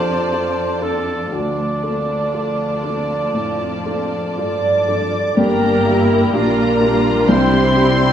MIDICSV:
0, 0, Header, 1, 11, 480
1, 0, Start_track
1, 0, Key_signature, -1, "minor"
1, 0, Tempo, 1006711
1, 633, Time_signature, 4, 2, 24, 8
1, 2563, Tempo, 953895
1, 3948, End_track
2, 0, Start_track
2, 0, Title_t, "Violin section"
2, 0, Program_c, 0, 48
2, 2082, Note_on_c, 0, 86, 53
2, 2541, Note_off_c, 0, 86, 0
2, 2565, Note_on_c, 0, 82, 72
2, 3041, Note_off_c, 0, 82, 0
2, 3047, Note_on_c, 0, 82, 84
2, 3519, Note_off_c, 0, 82, 0
2, 3522, Note_on_c, 0, 84, 95
2, 3948, Note_off_c, 0, 84, 0
2, 3948, End_track
3, 0, Start_track
3, 0, Title_t, "Clarinet"
3, 0, Program_c, 1, 71
3, 2087, Note_on_c, 1, 74, 47
3, 2555, Note_on_c, 1, 70, 61
3, 2562, Note_off_c, 1, 74, 0
3, 3038, Note_off_c, 1, 70, 0
3, 3041, Note_on_c, 1, 70, 62
3, 3517, Note_on_c, 1, 72, 73
3, 3524, Note_off_c, 1, 70, 0
3, 3948, Note_off_c, 1, 72, 0
3, 3948, End_track
4, 0, Start_track
4, 0, Title_t, "Flute section"
4, 0, Program_c, 2, 73
4, 2087, Note_on_c, 2, 74, 50
4, 2544, Note_off_c, 2, 74, 0
4, 2559, Note_on_c, 2, 70, 68
4, 3046, Note_off_c, 2, 70, 0
4, 3052, Note_on_c, 2, 70, 67
4, 3521, Note_off_c, 2, 70, 0
4, 3525, Note_on_c, 2, 72, 77
4, 3948, Note_off_c, 2, 72, 0
4, 3948, End_track
5, 0, Start_track
5, 0, Title_t, "Cor anglais"
5, 0, Program_c, 3, 69
5, 0, Note_on_c, 3, 72, 73
5, 395, Note_on_c, 3, 69, 52
5, 402, Note_off_c, 3, 72, 0
5, 630, Note_off_c, 3, 69, 0
5, 632, Note_on_c, 3, 62, 48
5, 2072, Note_off_c, 3, 62, 0
5, 3948, End_track
6, 0, Start_track
6, 0, Title_t, "Violin section"
6, 0, Program_c, 4, 48
6, 0, Note_on_c, 4, 74, 57
6, 0, Note_on_c, 4, 81, 61
6, 615, Note_off_c, 4, 74, 0
6, 615, Note_off_c, 4, 81, 0
6, 630, Note_on_c, 4, 74, 41
6, 631, Note_on_c, 4, 81, 38
6, 2447, Note_off_c, 4, 74, 0
6, 2448, Note_off_c, 4, 81, 0
6, 2557, Note_on_c, 4, 67, 48
6, 2560, Note_off_c, 4, 67, 0
6, 2560, Note_on_c, 4, 67, 51
6, 3027, Note_off_c, 4, 67, 0
6, 3043, Note_on_c, 4, 65, 54
6, 3284, Note_off_c, 4, 65, 0
6, 3290, Note_on_c, 4, 65, 60
6, 3521, Note_on_c, 4, 64, 55
6, 3524, Note_on_c, 4, 67, 54
6, 3525, Note_off_c, 4, 65, 0
6, 3948, Note_off_c, 4, 64, 0
6, 3948, Note_off_c, 4, 67, 0
6, 3948, End_track
7, 0, Start_track
7, 0, Title_t, "Felt piano"
7, 0, Program_c, 5, 0
7, 0, Control_c, 5, 64, 127
7, 0, Note_on_c, 5, 48, 34
7, 0, Note_on_c, 5, 62, 31
7, 0, Note_on_c, 5, 65, 35
7, 0, Note_on_c, 5, 69, 34
7, 64, Note_off_c, 5, 48, 0
7, 136, Note_off_c, 5, 62, 0
7, 137, Note_off_c, 5, 69, 0
7, 154, Note_off_c, 5, 65, 0
7, 154, Note_on_c, 5, 65, 29
7, 155, Note_on_c, 5, 69, 32
7, 372, Note_off_c, 5, 65, 0
7, 372, Note_off_c, 5, 69, 0
7, 389, Note_on_c, 5, 69, 26
7, 390, Note_on_c, 5, 62, 23
7, 612, Note_off_c, 5, 69, 0
7, 613, Note_off_c, 5, 62, 0
7, 628, Note_on_c, 5, 38, 32
7, 643, Control_c, 5, 64, 0
7, 732, Control_c, 5, 64, 127
7, 871, Note_on_c, 5, 62, 24
7, 873, Note_on_c, 5, 69, 26
7, 1095, Note_off_c, 5, 62, 0
7, 1096, Note_off_c, 5, 69, 0
7, 1114, Note_on_c, 5, 65, 25
7, 1115, Note_on_c, 5, 69, 27
7, 1337, Note_off_c, 5, 65, 0
7, 1338, Note_off_c, 5, 69, 0
7, 1350, Note_on_c, 5, 62, 23
7, 1350, Note_on_c, 5, 69, 26
7, 1576, Note_off_c, 5, 62, 0
7, 1576, Note_off_c, 5, 69, 0
7, 1577, Note_off_c, 5, 38, 0
7, 1590, Note_on_c, 5, 45, 25
7, 1837, Note_on_c, 5, 62, 24
7, 1839, Note_on_c, 5, 69, 27
7, 1989, Note_off_c, 5, 45, 0
7, 2068, Note_off_c, 5, 62, 0
7, 2069, Note_off_c, 5, 69, 0
7, 2086, Note_on_c, 5, 65, 25
7, 2089, Note_on_c, 5, 69, 27
7, 2310, Note_off_c, 5, 65, 0
7, 2311, Note_off_c, 5, 69, 0
7, 2325, Note_on_c, 5, 62, 23
7, 2326, Note_on_c, 5, 69, 25
7, 2543, Note_off_c, 5, 62, 0
7, 2543, Note_off_c, 5, 69, 0
7, 2561, Note_on_c, 5, 43, 50
7, 2575, Control_c, 5, 64, 0
7, 2649, Control_c, 5, 64, 127
7, 2798, Note_off_c, 5, 43, 0
7, 2801, Note_on_c, 5, 62, 37
7, 2804, Note_on_c, 5, 65, 39
7, 2807, Note_on_c, 5, 67, 40
7, 3027, Note_off_c, 5, 62, 0
7, 3028, Note_off_c, 5, 65, 0
7, 3030, Note_off_c, 5, 67, 0
7, 3045, Note_on_c, 5, 62, 39
7, 3046, Note_on_c, 5, 65, 43
7, 3048, Note_on_c, 5, 67, 43
7, 3268, Note_off_c, 5, 62, 0
7, 3268, Note_off_c, 5, 65, 0
7, 3270, Note_off_c, 5, 67, 0
7, 3282, Note_on_c, 5, 62, 39
7, 3283, Note_on_c, 5, 65, 40
7, 3286, Note_on_c, 5, 67, 42
7, 3505, Note_off_c, 5, 62, 0
7, 3506, Note_off_c, 5, 65, 0
7, 3507, Note_off_c, 5, 67, 0
7, 3524, Note_on_c, 5, 36, 53
7, 3539, Control_c, 5, 64, 0
7, 3610, Control_c, 5, 64, 127
7, 3757, Note_off_c, 5, 36, 0
7, 3763, Note_on_c, 5, 60, 45
7, 3764, Note_on_c, 5, 62, 41
7, 3765, Note_on_c, 5, 67, 47
7, 3948, Note_off_c, 5, 60, 0
7, 3948, Note_off_c, 5, 62, 0
7, 3948, Note_off_c, 5, 67, 0
7, 3948, End_track
8, 0, Start_track
8, 0, Title_t, "Viola section"
8, 0, Program_c, 6, 48
8, 0, Note_on_c, 6, 53, 50
8, 0, Note_on_c, 6, 65, 52
8, 613, Note_off_c, 6, 65, 0
8, 614, Note_off_c, 6, 53, 0
8, 634, Note_on_c, 6, 65, 35
8, 636, Note_on_c, 6, 53, 35
8, 2449, Note_off_c, 6, 65, 0
8, 2450, Note_off_c, 6, 53, 0
8, 2560, Note_on_c, 6, 58, 47
8, 2561, Note_on_c, 6, 62, 51
8, 2788, Note_off_c, 6, 62, 0
8, 2805, Note_on_c, 6, 64, 51
8, 3027, Note_off_c, 6, 58, 0
8, 3046, Note_on_c, 6, 55, 49
8, 3047, Note_on_c, 6, 62, 52
8, 3049, Note_off_c, 6, 64, 0
8, 3523, Note_off_c, 6, 55, 0
8, 3528, Note_off_c, 6, 62, 0
8, 3529, Note_on_c, 6, 55, 59
8, 3530, Note_on_c, 6, 60, 60
8, 3766, Note_on_c, 6, 64, 57
8, 3768, Note_off_c, 6, 60, 0
8, 3948, Note_off_c, 6, 55, 0
8, 3948, Note_off_c, 6, 64, 0
8, 3948, End_track
9, 0, Start_track
9, 0, Title_t, "French horn section"
9, 0, Program_c, 7, 60
9, 2567, Note_on_c, 7, 55, 53
9, 2567, Note_on_c, 7, 62, 55
9, 3948, Note_off_c, 7, 55, 0
9, 3948, Note_off_c, 7, 62, 0
9, 3948, End_track
10, 0, Start_track
10, 0, Title_t, "Cello section"
10, 0, Program_c, 8, 48
10, 0, Note_on_c, 8, 41, 48
10, 613, Note_off_c, 8, 41, 0
10, 631, Note_on_c, 8, 38, 33
10, 1058, Note_off_c, 8, 38, 0
10, 1116, Note_on_c, 8, 38, 35
10, 1579, Note_off_c, 8, 38, 0
10, 1596, Note_on_c, 8, 41, 38
10, 2088, Note_on_c, 8, 43, 36
10, 2090, Note_off_c, 8, 41, 0
10, 2557, Note_off_c, 8, 43, 0
10, 2563, Note_on_c, 8, 43, 49
10, 3029, Note_off_c, 8, 43, 0
10, 3045, Note_on_c, 8, 46, 50
10, 3527, Note_off_c, 8, 46, 0
10, 3528, Note_on_c, 8, 48, 57
10, 3948, Note_off_c, 8, 48, 0
10, 3948, End_track
11, 0, Start_track
11, 0, Title_t, "Double bass section"
11, 0, Program_c, 10, 48
11, 2558, Note_on_c, 10, 31, 55
11, 3026, Note_off_c, 10, 31, 0
11, 3045, Note_on_c, 10, 34, 51
11, 3523, Note_on_c, 10, 36, 57
11, 3528, Note_off_c, 10, 34, 0
11, 3948, Note_off_c, 10, 36, 0
11, 3948, End_track
0, 0, End_of_file